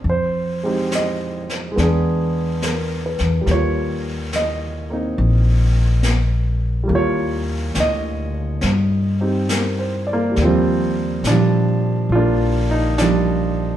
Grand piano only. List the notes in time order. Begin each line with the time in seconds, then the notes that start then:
0.10 C5
0.63 G#3 C4 D#4 G4
0.95 D#5
1.71 G#3
1.76 B3 D4
1.83 G#4
2.64 A#4
3.06 B4
3.41 G3
3.46 A#3
3.51 F4 C#5
4.36 D#5
4.90 A#3 C4 D#4
6.83 G3
6.88 A#3
6.95 F4 C#5
7.80 D#5
9.21 C4 D#4 G4
9.50 A#4
9.79 C5
10.07 D5
10.13 A#3
10.32 G3
10.36 A#3 D5
10.42 F3 G3 C4 F4
11.27 F3 G3 D4
12.12 D4 F4
12.16 A#3
12.71 D#4
12.98 F3 G3 D4